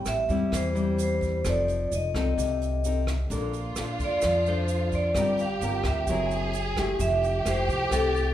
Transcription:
Already playing: nylon-string guitar A2 G3 C4 E4
0.06 upright bass A1, vibraphone E5, cross-stick, closed hi-hat, shaker
0.29 upright bass E2, nylon-string guitar G3 C4 E4, kick, closed hi-hat, shaker
0.52 upright bass E2, nylon-string guitar E3, vibraphone C5, kick, cross-stick, closed hi-hat, shaker
0.75 nylon-string guitar G3 C4 E4, closed hi-hat, shaker
0.98 closed hi-hat, shaker
1.03 vibraphone C5
1.21 kick, closed hi-hat, shaker
1.45 upright bass F1, nylon-string guitar F3 C4 D#4 A4, vibraphone D5, kick, cross-stick, closed hi-hat, shaker
1.68 closed hi-hat, shaker
1.92 upright bass F1, vibraphone D#5, closed hi-hat, shaker
2.14 upright bass C2, nylon-string guitar C4 D#4 A4, vibraphone D#5, kick, cross-stick, closed hi-hat, shaker
2.37 upright bass C2, nylon-string guitar C3, kick, closed hi-hat, shaker
2.62 closed hi-hat, shaker
2.84 nylon-string guitar C4 D#4 A4, closed hi-hat, shaker
3.07 kick, cross-stick, closed hi-hat, shaker
3.30 upright bass A#1, nylon-string guitar A#3 D4 A4 C5, violin section F4, kick, closed hi-hat, shaker
3.53 closed hi-hat, shaker
3.76 upright bass A#1, nylon-string guitar D4 A4 C5, cross-stick, closed hi-hat, shaker
3.99 upright bass F2, kick, closed hi-hat, shaker
4.04 vibraphone D5
4.21 upright bass F2, nylon-string guitar F3, kick, cross-stick, closed hi-hat, shaker
4.46 nylon-string guitar D4 A4 C5, vibraphone C5, closed hi-hat, shaker
4.68 closed hi-hat, shaker
4.92 vibraphone D5, kick, closed hi-hat, shaker
5.15 upright bass G1, nylon-string guitar G3 C4 F4 A#4, violin section G4, kick, cross-stick, closed hi-hat, shaker
5.37 vibraphone F5, closed hi-hat, shaker
5.61 upright bass G1, nylon-string guitar C4 F4 A#4, closed hi-hat, shaker
5.84 upright bass D2, vibraphone E5, kick, cross-stick, closed hi-hat, shaker
6.07 upright bass F#1, nylon-string guitar F#3 C4 E4 A#4, violin section G#4, kick, closed hi-hat, shaker
6.30 closed hi-hat, shaker
6.53 closed hi-hat, shaker
6.76 nylon-string guitar A3 E4 G4, kick, cross-stick, closed hi-hat, shaker
6.99 upright bass F1, nylon-string guitar F3, violin section G4, vibraphone E5, kick, closed hi-hat, shaker
7.23 closed hi-hat, shaker
7.45 upright bass F1, nylon-string guitar A3 E4 G4, vibraphone C5, cross-stick, closed hi-hat, shaker
7.68 upright bass C2, kick, closed hi-hat, shaker
7.91 upright bass C2, nylon-string guitar C3 A3 E4 G4, vibraphone A4, kick, cross-stick, closed hi-hat, shaker
8.14 vibraphone A4, closed hi-hat, shaker

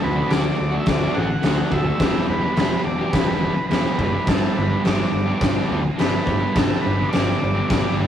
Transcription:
Already playing: overdriven electric guitar D3 A3 D4 F#4, transistor combo organ D4 F#4 A4
0.03 picked electric bass D2, transistor combo organ B4
0.15 overdriven electric guitar D4 F#4
0.19 overdriven electric guitar A3
0.28 picked electric bass D2, overdriven electric guitar D3 A3 D4, transistor combo organ D4 F#4 A4 D5, snare, crash
0.33 overdriven electric guitar F#4
0.58 picked electric bass D2, transistor combo organ D4 F#4 A4, muted overdriven electric guitar stroke
0.71 overdriven electric guitar A3 D4 F#4
0.80 transistor combo organ E5
0.86 picked electric bass D2, transistor combo organ D4 F#4 A4 D5, kick, snare, crash
1.00 overdriven electric guitar D4 F#4
1.04 overdriven electric guitar A3
1.14 picked electric bass A1, overdriven electric guitar D3 A3 D4, transistor combo organ F#5
1.18 overdriven electric guitar F#4
1.30 muted overdriven electric guitar stroke
1.42 picked electric bass D2, overdriven electric guitar D3 A3 D4, transistor combo organ D4 F#4 A4, snare, crash
1.47 overdriven electric guitar F#4
1.70 picked electric bass D2, overdriven electric guitar D3 A3 D4 F#4, transistor combo organ E5, kick
1.85 overdriven electric guitar D4 F#4
1.89 overdriven electric guitar A3
1.98 picked electric bass E1, overdriven electric guitar E2 B2 E3 G3 B3, transistor combo organ E4 G4 B4, kick, snare, crash
2.03 overdriven electric guitar G4
2.28 picked electric bass E1, transistor combo organ B4
2.41 overdriven electric guitar G3 B3 G4
2.45 overdriven electric guitar E3
2.56 picked electric bass E1, overdriven electric guitar E2 B2 E3 G3, transistor combo organ E4 G4 A4, snare, crash
2.60 overdriven electric guitar B3 G4
2.83 picked electric bass E1, transistor combo organ E4 G4 D5, muted overdriven electric guitar stroke
2.98 overdriven electric guitar G3 B3 G4
3.03 overdriven electric guitar E3
3.12 picked electric bass E1, transistor combo organ E4 G4 A4 B4, kick, snare, crash
3.26 overdriven electric guitar E3 G3 B3 G4
3.41 overdriven electric guitar E3 G3 B3
3.45 overdriven electric guitar G4
3.56 muted overdriven electric guitar stroke
3.69 picked electric bass E1, overdriven electric guitar E2 B2 E3, transistor combo organ E4 G4 B4, snare, crash
3.73 overdriven electric guitar G3 B3 G4
3.98 picked electric bass F#1, overdriven electric guitar E3 G3 B3 G4, kick
4.12 overdriven electric guitar G3 B3 G4
4.16 overdriven electric guitar E3
4.26 picked electric bass G1, overdriven electric guitar G2 D3 G3 B3 D4, transistor combo organ D4 G4 A4 B4, kick, snare, crash
4.31 overdriven electric guitar G4
4.57 picked electric bass G1, transistor combo organ B4
4.69 overdriven electric guitar B3 D4 G4
4.74 overdriven electric guitar G3
4.83 picked electric bass G1, overdriven electric guitar G2 D3 G3 B3 D4, transistor combo organ D4 G4 B4, snare, crash
4.87 overdriven electric guitar G4, transistor combo organ D5
5.11 picked electric bass G1, transistor combo organ D4 G4 B4, muted overdriven electric guitar stroke
5.26 overdriven electric guitar B3 D4 G4
5.30 overdriven electric guitar G3
5.39 picked electric bass G1, transistor combo organ D4 G4 B4 D5, kick, snare, crash
5.54 overdriven electric guitar B3 D4 G4
5.59 overdriven electric guitar G3
5.67 picked electric bass D2, overdriven electric guitar G3 B3 D4
5.72 overdriven electric guitar G4
5.84 muted overdriven electric guitar stroke
5.96 picked electric bass G1, overdriven electric guitar G2 D3 G3 B3 D4, transistor combo organ D4 G4 A4 B4, snare, crash
6.00 overdriven electric guitar G4
6.25 picked electric bass G1, overdriven electric guitar G3 B3 D4 G4, kick
6.39 overdriven electric guitar G3 B3 D4 G4
6.53 picked electric bass G1, overdriven electric guitar G2 D3 G3 B3 D4, transistor combo organ D4 G4 A4, kick, crash
6.57 overdriven electric guitar G4, transistor combo organ B4, snare
6.81 transistor combo organ B4
6.85 picked electric bass G1
6.97 overdriven electric guitar B3 D4 G4
7.02 overdriven electric guitar G3
7.09 overdriven electric guitar G2 D3, transistor combo organ D4 G4 B4 D5, crash
7.13 picked electric bass G1, overdriven electric guitar G3 B3 D4 G4, snare
7.40 picked electric bass G1, transistor combo organ D4 G4 B4, muted overdriven electric guitar stroke
7.54 overdriven electric guitar B3 D4 G4
7.58 overdriven electric guitar G3
7.68 picked electric bass G1, transistor combo organ D4 G4 D5, kick, snare, crash
7.72 transistor combo organ B4
7.83 overdriven electric guitar B3 D4 G4
7.87 overdriven electric guitar G3
7.96 overdriven electric guitar G3 B3 D4
8.01 overdriven electric guitar G4

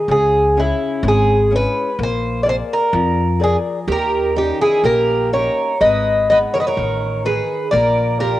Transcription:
Already playing: bouzouki G#4
0.08 upright bass C#2, nylon-string guitar C#3, bouzouki G#4
0.57 nylon-string guitar C#4 E4 G#4, bouzouki E4
1.03 upright bass G#1, nylon-string guitar G#3
1.08 bouzouki G#4
1.51 nylon-string guitar C#4 E4 G#4
1.56 bouzouki B4
1.99 upright bass A#1, nylon-string guitar A#3
2.03 bouzouki C5
2.43 nylon-string guitar G#4 A#4 D5, bouzouki D5
2.49 bouzouki C5
2.73 bouzouki A#4
2.93 upright bass F2, nylon-string guitar F3
3.40 nylon-string guitar G#4 A#4 D5, bouzouki G#4
3.88 upright bass D#2, nylon-string guitar D#3, twelve-string acoustic guitar G4
3.92 bouzouki A#4
4.36 nylon-string guitar C#4 D#4 G4, twelve-string acoustic guitar D#4, bouzouki G4
4.61 twelve-string acoustic guitar E4, bouzouki G#4
4.83 upright bass A#1, nylon-string guitar A#3, twelve-string acoustic guitar G4, bouzouki A#4
5.33 nylon-string guitar C#4 D#4 G4, twelve-string acoustic guitar A#4, bouzouki C#5
5.81 upright bass G#1, nylon-string guitar G#3, twelve-string acoustic guitar B4, bouzouki D#5
6.30 nylon-string guitar B3 D#4 G#4, twelve-string acoustic guitar B4, bouzouki D#5
6.54 twelve-string acoustic guitar A#4, bouzouki C#5
6.60 twelve-string acoustic guitar B4, bouzouki D#5
6.67 twelve-string acoustic guitar A#4, bouzouki C#5
6.77 upright bass A1, nylon-string guitar D#3
7.25 nylon-string guitar D#4 G#4 B4, twelve-string acoustic guitar G#4, bouzouki B4
7.71 upright bass A#1, nylon-string guitar A#3, twelve-string acoustic guitar A#4, bouzouki D5
8.20 nylon-string guitar F4 A#4 D5, twelve-string acoustic guitar G4, bouzouki A#4

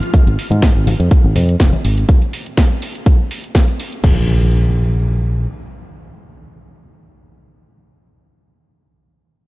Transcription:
Already playing: string machine F4 F5, downlifter
0.02 closed hi-hat, tambourine
0.14 muted fingered electric bass stroke, kick, closed hi-hat, tambourine, high conga
0.27 fingered electric bass G#1, closed hi-hat
0.38 open hi-hat, tambourine
0.50 fingered electric bass G#2, closed hi-hat, tambourine, high conga
0.62 kick, snare, closed hi-hat
0.75 fingered electric bass G#1
0.86 open hi-hat, tambourine, high conga
1.00 fingered electric bass F2, closed hi-hat, tambourine
1.11 muted fingered electric bass stroke, kick, closed hi-hat
1.24 fingered electric bass G#1, tambourine, high conga
1.36 fingered electric bass F2, open hi-hat, tambourine, low conga
1.48 closed hi-hat, tambourine
1.60 fingered electric bass F1, kick, snare, closed hi-hat
1.73 closed hi-hat, tambourine, high conga
1.84 fingered electric bass G#1, open hi-hat, tambourine
1.97 closed hi-hat, tambourine
2.09 kick, closed hi-hat
2.22 closed hi-hat
2.33 open hi-hat
2.46 closed hi-hat
2.57 kick, snare, closed hi-hat
2.82 open hi-hat
2.95 closed hi-hat
3.06 kick, closed hi-hat
3.31 open hi-hat
3.44 closed hi-hat
3.55 kick, snare, closed hi-hat
3.68 closed hi-hat
3.80 open hi-hat
3.93 closed hi-hat
4.04 fingered electric bass A#1, kick, crash, impact

